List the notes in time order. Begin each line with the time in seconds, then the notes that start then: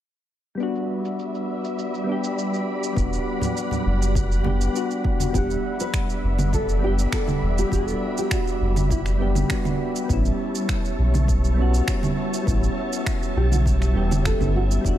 0.55 G3 B3 D5 E5
0.59 G3 D4 F#4 B5, shaker
0.75 shaker
1.05 shaker
1.19 shaker
1.35 shaker
1.64 shaker
1.79 shaker
1.94 shaker
2.04 G3 B3
2.09 D4 G4
2.24 shaker
2.38 shaker
2.54 shaker
2.83 shaker
2.93 E1 G3 B3 F#5, kick
2.98 D4 F#4, shaker
3.13 shaker
3.41 low conga, shaker
3.57 shaker
3.71 low conga, shaker
3.86 F#1
4.02 shaker
4.15 kick, shaker
4.32 shaker
4.43 G3 B3 D4, high conga
4.47 G4
4.61 shaker
4.73 G3 B3 D4 F#4, shaker
4.91 shaker
5.05 kick
5.20 high conga, shaker
5.30 G3 B3 D5 E5
5.34 E1 D4 G4 F#5 B5, kick, shaker
5.50 shaker
5.80 B4, shaker
5.94 finger snap, kick, shaker
6.10 shaker
6.24 F#1
6.39 low conga, shaker
6.53 A4, kick, shaker
6.69 shaker
6.79 G3 B3
6.84 D4 G4
6.99 shaker
7.12 A4, finger snap, kick, shaker
7.28 low conga, shaker
7.42 E1
7.58 G4, shaker
7.68 E1 G3 B3, kick
7.73 D4 F#4 A4, shaker
7.88 shaker
8.18 G4, shaker
8.31 F#4, finger snap, kick, shaker
8.47 shaker
8.61 F#1
8.76 low conga, shaker
8.91 E4, kick, shaker
9.06 finger snap, shaker
9.18 G3 B3 D4 G4
9.35 low conga, shaker
9.48 G3 B3 D4 F#4, finger snap, kick, shaker
9.65 low conga, shaker
9.96 shaker
10.06 A1 G3 B3 C#5 E5 A5, kick
10.10 C#4 E4, shaker
10.25 shaker
10.55 shaker
10.69 finger snap, kick, shaker
10.85 shaker
10.99 B1
11.14 low conga, shaker
11.28 kick, shaker
11.44 shaker
11.54 G3 B3
11.59 C#4 F#4
11.74 shaker
11.88 finger snap, kick, shaker
12.03 low conga, shaker
12.34 shaker
12.43 A1 G3 B3
12.47 C#4 E4, kick, shaker
12.63 shaker
12.93 shaker
13.06 finger snap, kick, shaker
13.23 shaker
13.36 B1 G4
13.52 F#4, low conga, shaker
13.66 G4, kick, shaker
13.82 finger snap, shaker
13.94 E1 G3 B3 C#4 G4
14.11 low conga, shaker
14.25 A4, finger snap, kick, shaker
14.39 G1 G3 B3 C#4 E4, low conga, shaker
14.56 F#4
14.71 E4, shaker
14.81 E1 G3 B3, kick
14.85 D4 F#4 D5 B5, shaker